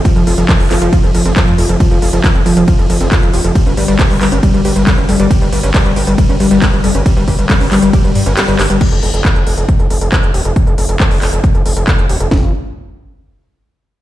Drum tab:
CC |----------------|----------------|----------------|----------------|
RD |x---x---x---x---|x---x---x---x---|x---x---x---x---|x---x---x---x---|
HH |xxoxxooxxxoxxxox|xxoxxxoxxxoxxxox|xxoxxooxxxoxxxox|xxoxxxoxxxoxxxox|
CP |----x-x-----x---|----x-------x---|----x-x-----x---|----x-------x---|
SD |----------------|----------------|----------------|----------------|
BD |o---o---o---o---|o---o---o---o---|o---o---o---o---|o---o---o---o---|

CC |----------------|x---------------|----------------|----------------|
RD |x---x---x---x---|----------------|----------------|----------------|
HH |xxoxxooxxxoxxxox|xxoxxxoxxxoxxxox|xxoxxooxxxoxxxox|----------------|
CP |----x-x-----x-x-|----x-------x---|----x-x-----x---|----------------|
SD |----------------|----------------|----------------|o---------------|
BD |o-o-o---o-------|o---o---o---o---|o---o---o---o---|o---------------|